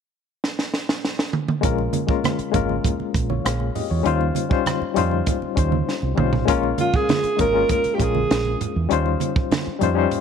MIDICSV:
0, 0, Header, 1, 6, 480
1, 0, Start_track
1, 0, Tempo, 606061
1, 1293, Time_signature, 4, 2, 24, 8
1, 8082, End_track
2, 0, Start_track
2, 0, Title_t, "Alto saxophone"
2, 0, Program_c, 0, 65
2, 5388, Note_on_c, 0, 65, 75
2, 5512, Note_on_c, 0, 68, 87
2, 5524, Note_off_c, 0, 65, 0
2, 5863, Note_off_c, 0, 68, 0
2, 5868, Note_on_c, 0, 70, 88
2, 6084, Note_off_c, 0, 70, 0
2, 6108, Note_on_c, 0, 70, 84
2, 6292, Note_on_c, 0, 67, 56
2, 6304, Note_off_c, 0, 70, 0
2, 6359, Note_on_c, 0, 68, 80
2, 6371, Note_off_c, 0, 67, 0
2, 6826, Note_off_c, 0, 68, 0
2, 8082, End_track
3, 0, Start_track
3, 0, Title_t, "Reed electric piano"
3, 0, Program_c, 1, 4
3, 1276, Note_on_c, 1, 56, 95
3, 1282, Note_on_c, 1, 58, 88
3, 1291, Note_on_c, 1, 61, 82
3, 1298, Note_on_c, 1, 65, 83
3, 1308, Note_on_c, 1, 70, 95
3, 1427, Control_c, 1, 64, 127
3, 1542, Note_off_c, 1, 56, 0
3, 1546, Note_off_c, 1, 58, 0
3, 1550, Note_off_c, 1, 61, 0
3, 1554, Note_off_c, 1, 65, 0
3, 1559, Note_off_c, 1, 70, 0
3, 1637, Note_on_c, 1, 56, 70
3, 1643, Note_on_c, 1, 58, 63
3, 1651, Note_on_c, 1, 61, 64
3, 1660, Note_on_c, 1, 65, 63
3, 1667, Note_on_c, 1, 70, 79
3, 1903, Note_off_c, 1, 56, 0
3, 1906, Note_off_c, 1, 58, 0
3, 1910, Note_off_c, 1, 61, 0
3, 1915, Note_off_c, 1, 65, 0
3, 1918, Note_off_c, 1, 70, 0
3, 1995, Note_on_c, 1, 56, 78
3, 2004, Note_on_c, 1, 58, 71
3, 2010, Note_on_c, 1, 61, 69
3, 2018, Note_on_c, 1, 65, 67
3, 2027, Note_on_c, 1, 70, 84
3, 2348, Note_off_c, 1, 56, 0
3, 2352, Note_off_c, 1, 58, 0
3, 2356, Note_off_c, 1, 61, 0
3, 2359, Note_off_c, 1, 65, 0
3, 2364, Note_off_c, 1, 70, 0
3, 2612, Note_on_c, 1, 73, 52
3, 2617, Note_on_c, 1, 65, 44
3, 2727, Note_off_c, 1, 73, 0
3, 2729, Note_off_c, 1, 65, 0
3, 2732, Note_on_c, 1, 77, 60
3, 2735, Note_on_c, 1, 68, 55
3, 2961, Note_off_c, 1, 77, 0
3, 2962, Note_off_c, 1, 68, 0
3, 2973, Note_on_c, 1, 75, 62
3, 2979, Note_on_c, 1, 67, 51
3, 3087, Note_off_c, 1, 75, 0
3, 3090, Note_off_c, 1, 67, 0
3, 3094, Note_on_c, 1, 73, 59
3, 3097, Note_on_c, 1, 65, 47
3, 3194, Note_on_c, 1, 55, 92
3, 3200, Note_on_c, 1, 61, 85
3, 3207, Note_off_c, 1, 65, 0
3, 3209, Note_on_c, 1, 63, 83
3, 3217, Note_on_c, 1, 65, 93
3, 3225, Control_c, 1, 64, 0
3, 3226, Note_on_c, 1, 72, 106
3, 3322, Note_off_c, 1, 73, 0
3, 3361, Control_c, 1, 64, 127
3, 3462, Note_off_c, 1, 55, 0
3, 3465, Note_off_c, 1, 61, 0
3, 3469, Note_off_c, 1, 63, 0
3, 3473, Note_off_c, 1, 65, 0
3, 3478, Note_off_c, 1, 72, 0
3, 3556, Note_on_c, 1, 55, 72
3, 3564, Note_on_c, 1, 61, 67
3, 3571, Note_on_c, 1, 63, 61
3, 3580, Note_on_c, 1, 65, 64
3, 3586, Note_on_c, 1, 72, 80
3, 3823, Note_off_c, 1, 55, 0
3, 3827, Note_off_c, 1, 61, 0
3, 3830, Note_off_c, 1, 63, 0
3, 3835, Note_off_c, 1, 65, 0
3, 3838, Note_off_c, 1, 72, 0
3, 3912, Note_on_c, 1, 55, 77
3, 3921, Note_on_c, 1, 61, 69
3, 3930, Note_on_c, 1, 63, 78
3, 3936, Note_on_c, 1, 65, 75
3, 3944, Note_on_c, 1, 72, 90
3, 4267, Note_off_c, 1, 55, 0
3, 4271, Note_off_c, 1, 61, 0
3, 4276, Note_off_c, 1, 63, 0
3, 4279, Note_off_c, 1, 65, 0
3, 4283, Note_off_c, 1, 72, 0
3, 4393, Note_on_c, 1, 55, 59
3, 4401, Note_on_c, 1, 61, 61
3, 4410, Note_on_c, 1, 63, 61
3, 4418, Note_on_c, 1, 65, 58
3, 4426, Note_on_c, 1, 72, 66
3, 4747, Note_off_c, 1, 55, 0
3, 4751, Note_off_c, 1, 61, 0
3, 4756, Note_off_c, 1, 63, 0
3, 4760, Note_off_c, 1, 65, 0
3, 4764, Note_off_c, 1, 72, 0
3, 4874, Note_on_c, 1, 55, 66
3, 4883, Note_on_c, 1, 61, 65
3, 4890, Note_on_c, 1, 63, 64
3, 4898, Note_on_c, 1, 65, 68
3, 4907, Note_on_c, 1, 72, 78
3, 5056, Note_off_c, 1, 55, 0
3, 5060, Note_off_c, 1, 61, 0
3, 5064, Note_off_c, 1, 63, 0
3, 5068, Note_off_c, 1, 65, 0
3, 5072, Note_off_c, 1, 72, 0
3, 5113, Note_on_c, 1, 56, 98
3, 5121, Note_on_c, 1, 58, 91
3, 5129, Note_on_c, 1, 61, 95
3, 5137, Note_on_c, 1, 65, 89
3, 5143, Control_c, 1, 64, 0
3, 5144, Note_on_c, 1, 70, 111
3, 5293, Control_c, 1, 64, 127
3, 5639, Note_off_c, 1, 56, 0
3, 5643, Note_off_c, 1, 58, 0
3, 5648, Note_off_c, 1, 61, 0
3, 5651, Note_off_c, 1, 65, 0
3, 5655, Note_off_c, 1, 70, 0
3, 5835, Note_on_c, 1, 56, 69
3, 5844, Note_on_c, 1, 58, 65
3, 5850, Note_on_c, 1, 61, 67
3, 5860, Note_on_c, 1, 65, 63
3, 5867, Note_on_c, 1, 70, 81
3, 5930, Note_off_c, 1, 56, 0
3, 5935, Note_off_c, 1, 58, 0
3, 5938, Note_off_c, 1, 61, 0
3, 5943, Note_off_c, 1, 65, 0
3, 5946, Note_off_c, 1, 70, 0
3, 5957, Note_on_c, 1, 56, 64
3, 5964, Note_on_c, 1, 58, 62
3, 5971, Note_on_c, 1, 61, 61
3, 5979, Note_on_c, 1, 65, 62
3, 5987, Note_on_c, 1, 70, 71
3, 6223, Note_off_c, 1, 56, 0
3, 6227, Note_off_c, 1, 58, 0
3, 6230, Note_off_c, 1, 61, 0
3, 6234, Note_off_c, 1, 65, 0
3, 6238, Note_off_c, 1, 70, 0
3, 6318, Note_on_c, 1, 56, 61
3, 6324, Note_on_c, 1, 58, 47
3, 6334, Note_on_c, 1, 61, 52
3, 6341, Note_on_c, 1, 65, 47
3, 6349, Note_on_c, 1, 70, 61
3, 6842, Note_off_c, 1, 56, 0
3, 6845, Note_off_c, 1, 58, 0
3, 6850, Note_off_c, 1, 61, 0
3, 6853, Note_off_c, 1, 65, 0
3, 6857, Note_off_c, 1, 70, 0
3, 7039, Note_on_c, 1, 55, 97
3, 7046, Note_on_c, 1, 61, 86
3, 7054, Note_on_c, 1, 63, 90
3, 7063, Note_on_c, 1, 65, 83
3, 7065, Control_c, 1, 64, 0
3, 7070, Note_on_c, 1, 72, 108
3, 7195, Control_c, 1, 64, 127
3, 7562, Note_off_c, 1, 55, 0
3, 7566, Note_off_c, 1, 61, 0
3, 7570, Note_off_c, 1, 63, 0
3, 7574, Note_off_c, 1, 65, 0
3, 7578, Note_off_c, 1, 72, 0
3, 7756, Note_on_c, 1, 55, 86
3, 7765, Note_on_c, 1, 61, 77
3, 7770, Note_on_c, 1, 63, 82
3, 7781, Note_on_c, 1, 65, 76
3, 7787, Note_on_c, 1, 72, 87
3, 7851, Note_off_c, 1, 55, 0
3, 7855, Note_off_c, 1, 61, 0
3, 7858, Note_off_c, 1, 63, 0
3, 7863, Note_off_c, 1, 65, 0
3, 7866, Note_off_c, 1, 72, 0
3, 7876, Note_on_c, 1, 55, 78
3, 7883, Note_on_c, 1, 61, 77
3, 7892, Note_on_c, 1, 63, 75
3, 7900, Note_on_c, 1, 65, 74
3, 7908, Note_on_c, 1, 72, 83
3, 8082, Note_off_c, 1, 55, 0
3, 8082, Note_off_c, 1, 61, 0
3, 8082, Note_off_c, 1, 63, 0
3, 8082, Note_off_c, 1, 65, 0
3, 8082, Note_off_c, 1, 72, 0
3, 8082, End_track
4, 0, Start_track
4, 0, Title_t, "Fingered electric bass"
4, 0, Program_c, 2, 33
4, 1295, Note_on_c, 2, 34, 90
4, 1482, Note_off_c, 2, 34, 0
4, 2012, Note_on_c, 2, 32, 73
4, 2200, Note_off_c, 2, 32, 0
4, 2491, Note_on_c, 2, 34, 81
4, 2680, Note_off_c, 2, 34, 0
4, 2735, Note_on_c, 2, 34, 82
4, 2922, Note_off_c, 2, 34, 0
4, 3097, Note_on_c, 2, 40, 67
4, 3189, Note_off_c, 2, 40, 0
4, 3215, Note_on_c, 2, 39, 98
4, 3402, Note_off_c, 2, 39, 0
4, 3933, Note_on_c, 2, 41, 65
4, 4121, Note_off_c, 2, 41, 0
4, 4412, Note_on_c, 2, 39, 80
4, 4600, Note_off_c, 2, 39, 0
4, 4773, Note_on_c, 2, 36, 73
4, 4867, Note_off_c, 2, 36, 0
4, 4892, Note_on_c, 2, 35, 78
4, 5080, Note_off_c, 2, 35, 0
4, 5135, Note_on_c, 2, 34, 86
4, 5322, Note_off_c, 2, 34, 0
4, 5854, Note_on_c, 2, 32, 71
4, 6041, Note_off_c, 2, 32, 0
4, 6332, Note_on_c, 2, 34, 71
4, 6520, Note_off_c, 2, 34, 0
4, 6580, Note_on_c, 2, 34, 78
4, 6765, Note_off_c, 2, 34, 0
4, 6938, Note_on_c, 2, 40, 78
4, 7030, Note_off_c, 2, 40, 0
4, 7057, Note_on_c, 2, 39, 84
4, 7243, Note_off_c, 2, 39, 0
4, 7773, Note_on_c, 2, 41, 72
4, 7961, Note_off_c, 2, 41, 0
4, 8082, End_track
5, 0, Start_track
5, 0, Title_t, "Muted fingered electric bass strokes"
5, 1892, Note_on_c, 9, 29, 43
5, 1971, Note_off_c, 9, 29, 0
5, 2375, Note_on_c, 9, 29, 39
5, 2454, Note_off_c, 9, 29, 0
5, 3813, Note_on_c, 9, 29, 44
5, 3893, Note_off_c, 9, 29, 0
5, 4294, Note_on_c, 9, 29, 39
5, 4373, Note_off_c, 9, 29, 0
5, 5731, Note_on_c, 9, 29, 41
5, 5811, Note_off_c, 9, 29, 0
5, 6217, Note_on_c, 9, 29, 38
5, 6297, Note_off_c, 9, 29, 0
5, 7658, Note_on_c, 9, 29, 42
5, 7737, Note_off_c, 9, 29, 0
5, 8082, End_track
6, 0, Start_track
6, 0, Title_t, "Drums"
6, 347, Note_on_c, 9, 38, 61
6, 426, Note_off_c, 9, 38, 0
6, 466, Note_on_c, 9, 38, 65
6, 545, Note_off_c, 9, 38, 0
6, 583, Note_on_c, 9, 38, 64
6, 662, Note_off_c, 9, 38, 0
6, 706, Note_on_c, 9, 38, 86
6, 785, Note_off_c, 9, 38, 0
6, 828, Note_on_c, 9, 38, 75
6, 907, Note_off_c, 9, 38, 0
6, 943, Note_on_c, 9, 38, 82
6, 1022, Note_off_c, 9, 38, 0
6, 1055, Note_on_c, 9, 45, 82
6, 1135, Note_off_c, 9, 45, 0
6, 1176, Note_on_c, 9, 45, 90
6, 1255, Note_off_c, 9, 45, 0
6, 1293, Note_on_c, 9, 42, 84
6, 1294, Note_on_c, 9, 36, 93
6, 1296, Note_on_c, 9, 62, 25
6, 1372, Note_off_c, 9, 42, 0
6, 1373, Note_off_c, 9, 36, 0
6, 1375, Note_off_c, 9, 62, 0
6, 1413, Note_on_c, 9, 62, 30
6, 1492, Note_off_c, 9, 62, 0
6, 1527, Note_on_c, 9, 63, 74
6, 1531, Note_on_c, 9, 42, 68
6, 1607, Note_off_c, 9, 63, 0
6, 1610, Note_off_c, 9, 42, 0
6, 1651, Note_on_c, 9, 36, 83
6, 1731, Note_off_c, 9, 36, 0
6, 1775, Note_on_c, 9, 62, 32
6, 1775, Note_on_c, 9, 63, 73
6, 1777, Note_on_c, 9, 42, 58
6, 1785, Note_on_c, 9, 37, 102
6, 1855, Note_off_c, 9, 62, 0
6, 1855, Note_off_c, 9, 63, 0
6, 1856, Note_off_c, 9, 42, 0
6, 1864, Note_off_c, 9, 37, 0
6, 1891, Note_on_c, 9, 42, 41
6, 1970, Note_off_c, 9, 42, 0
6, 2011, Note_on_c, 9, 42, 70
6, 2012, Note_on_c, 9, 36, 74
6, 2012, Note_on_c, 9, 64, 63
6, 2091, Note_off_c, 9, 36, 0
6, 2091, Note_off_c, 9, 42, 0
6, 2091, Note_off_c, 9, 64, 0
6, 2133, Note_on_c, 9, 63, 50
6, 2212, Note_off_c, 9, 63, 0
6, 2252, Note_on_c, 9, 64, 63
6, 2253, Note_on_c, 9, 36, 78
6, 2256, Note_on_c, 9, 42, 73
6, 2331, Note_off_c, 9, 64, 0
6, 2332, Note_off_c, 9, 36, 0
6, 2335, Note_off_c, 9, 42, 0
6, 2373, Note_on_c, 9, 62, 32
6, 2453, Note_off_c, 9, 62, 0
6, 2490, Note_on_c, 9, 36, 78
6, 2498, Note_on_c, 9, 42, 61
6, 2569, Note_off_c, 9, 36, 0
6, 2577, Note_off_c, 9, 42, 0
6, 2612, Note_on_c, 9, 63, 68
6, 2691, Note_off_c, 9, 63, 0
6, 2737, Note_on_c, 9, 42, 76
6, 2741, Note_on_c, 9, 37, 92
6, 2817, Note_off_c, 9, 42, 0
6, 2821, Note_off_c, 9, 37, 0
6, 2850, Note_on_c, 9, 62, 30
6, 2930, Note_off_c, 9, 62, 0
6, 2974, Note_on_c, 9, 46, 49
6, 2976, Note_on_c, 9, 64, 59
6, 3053, Note_off_c, 9, 46, 0
6, 3055, Note_off_c, 9, 64, 0
6, 3212, Note_on_c, 9, 42, 79
6, 3292, Note_off_c, 9, 42, 0
6, 3332, Note_on_c, 9, 62, 33
6, 3411, Note_off_c, 9, 62, 0
6, 3445, Note_on_c, 9, 63, 67
6, 3452, Note_on_c, 9, 42, 68
6, 3525, Note_off_c, 9, 63, 0
6, 3531, Note_off_c, 9, 42, 0
6, 3571, Note_on_c, 9, 36, 93
6, 3650, Note_off_c, 9, 36, 0
6, 3692, Note_on_c, 9, 42, 61
6, 3692, Note_on_c, 9, 62, 33
6, 3692, Note_on_c, 9, 63, 69
6, 3700, Note_on_c, 9, 37, 101
6, 3771, Note_off_c, 9, 62, 0
6, 3771, Note_off_c, 9, 63, 0
6, 3772, Note_off_c, 9, 42, 0
6, 3780, Note_off_c, 9, 37, 0
6, 3815, Note_on_c, 9, 62, 25
6, 3894, Note_off_c, 9, 62, 0
6, 3930, Note_on_c, 9, 42, 69
6, 3932, Note_on_c, 9, 64, 62
6, 4009, Note_off_c, 9, 42, 0
6, 4011, Note_off_c, 9, 64, 0
6, 4049, Note_on_c, 9, 63, 51
6, 4129, Note_off_c, 9, 63, 0
6, 4169, Note_on_c, 9, 42, 72
6, 4170, Note_on_c, 9, 62, 26
6, 4170, Note_on_c, 9, 64, 61
6, 4173, Note_on_c, 9, 36, 80
6, 4248, Note_off_c, 9, 42, 0
6, 4249, Note_off_c, 9, 62, 0
6, 4249, Note_off_c, 9, 64, 0
6, 4252, Note_off_c, 9, 36, 0
6, 4293, Note_on_c, 9, 62, 31
6, 4372, Note_off_c, 9, 62, 0
6, 4411, Note_on_c, 9, 36, 77
6, 4414, Note_on_c, 9, 42, 62
6, 4491, Note_off_c, 9, 36, 0
6, 4494, Note_off_c, 9, 42, 0
6, 4530, Note_on_c, 9, 63, 70
6, 4610, Note_off_c, 9, 63, 0
6, 4662, Note_on_c, 9, 38, 45
6, 4741, Note_off_c, 9, 38, 0
6, 4769, Note_on_c, 9, 62, 29
6, 4848, Note_off_c, 9, 62, 0
6, 4891, Note_on_c, 9, 45, 84
6, 4899, Note_on_c, 9, 64, 58
6, 4971, Note_off_c, 9, 45, 0
6, 4978, Note_off_c, 9, 64, 0
6, 5012, Note_on_c, 9, 43, 75
6, 5091, Note_off_c, 9, 43, 0
6, 5134, Note_on_c, 9, 42, 79
6, 5135, Note_on_c, 9, 36, 91
6, 5213, Note_off_c, 9, 42, 0
6, 5214, Note_off_c, 9, 36, 0
6, 5253, Note_on_c, 9, 62, 31
6, 5332, Note_off_c, 9, 62, 0
6, 5369, Note_on_c, 9, 63, 75
6, 5371, Note_on_c, 9, 42, 67
6, 5449, Note_off_c, 9, 63, 0
6, 5450, Note_off_c, 9, 42, 0
6, 5494, Note_on_c, 9, 36, 94
6, 5573, Note_off_c, 9, 36, 0
6, 5615, Note_on_c, 9, 42, 60
6, 5616, Note_on_c, 9, 62, 35
6, 5616, Note_on_c, 9, 63, 75
6, 5623, Note_on_c, 9, 38, 98
6, 5694, Note_off_c, 9, 42, 0
6, 5696, Note_off_c, 9, 62, 0
6, 5696, Note_off_c, 9, 63, 0
6, 5702, Note_off_c, 9, 38, 0
6, 5730, Note_on_c, 9, 42, 46
6, 5809, Note_off_c, 9, 42, 0
6, 5851, Note_on_c, 9, 64, 64
6, 5852, Note_on_c, 9, 42, 62
6, 5854, Note_on_c, 9, 36, 82
6, 5930, Note_off_c, 9, 64, 0
6, 5931, Note_off_c, 9, 42, 0
6, 5934, Note_off_c, 9, 36, 0
6, 6091, Note_on_c, 9, 64, 64
6, 6092, Note_on_c, 9, 42, 75
6, 6094, Note_on_c, 9, 36, 77
6, 6170, Note_off_c, 9, 64, 0
6, 6171, Note_off_c, 9, 42, 0
6, 6173, Note_off_c, 9, 36, 0
6, 6209, Note_on_c, 9, 42, 42
6, 6217, Note_on_c, 9, 62, 29
6, 6288, Note_off_c, 9, 42, 0
6, 6296, Note_off_c, 9, 62, 0
6, 6332, Note_on_c, 9, 36, 73
6, 6335, Note_on_c, 9, 42, 63
6, 6411, Note_off_c, 9, 36, 0
6, 6415, Note_off_c, 9, 42, 0
6, 6453, Note_on_c, 9, 63, 65
6, 6532, Note_off_c, 9, 63, 0
6, 6578, Note_on_c, 9, 62, 29
6, 6579, Note_on_c, 9, 42, 68
6, 6583, Note_on_c, 9, 38, 90
6, 6657, Note_off_c, 9, 62, 0
6, 6658, Note_off_c, 9, 42, 0
6, 6662, Note_off_c, 9, 38, 0
6, 6693, Note_on_c, 9, 62, 29
6, 6772, Note_off_c, 9, 62, 0
6, 6818, Note_on_c, 9, 42, 70
6, 6818, Note_on_c, 9, 64, 65
6, 6897, Note_off_c, 9, 42, 0
6, 6897, Note_off_c, 9, 64, 0
6, 7054, Note_on_c, 9, 42, 80
6, 7055, Note_on_c, 9, 62, 26
6, 7133, Note_off_c, 9, 42, 0
6, 7134, Note_off_c, 9, 62, 0
6, 7173, Note_on_c, 9, 62, 30
6, 7252, Note_off_c, 9, 62, 0
6, 7287, Note_on_c, 9, 63, 69
6, 7293, Note_on_c, 9, 42, 71
6, 7367, Note_off_c, 9, 63, 0
6, 7373, Note_off_c, 9, 42, 0
6, 7413, Note_on_c, 9, 36, 97
6, 7493, Note_off_c, 9, 36, 0
6, 7535, Note_on_c, 9, 42, 58
6, 7536, Note_on_c, 9, 63, 71
6, 7543, Note_on_c, 9, 38, 101
6, 7615, Note_off_c, 9, 42, 0
6, 7615, Note_off_c, 9, 63, 0
6, 7622, Note_off_c, 9, 38, 0
6, 7770, Note_on_c, 9, 64, 65
6, 7772, Note_on_c, 9, 42, 61
6, 7849, Note_off_c, 9, 64, 0
6, 7851, Note_off_c, 9, 42, 0
6, 8009, Note_on_c, 9, 62, 27
6, 8009, Note_on_c, 9, 64, 58
6, 8011, Note_on_c, 9, 42, 69
6, 8082, Note_off_c, 9, 42, 0
6, 8082, Note_off_c, 9, 62, 0
6, 8082, Note_off_c, 9, 64, 0
6, 8082, End_track
0, 0, End_of_file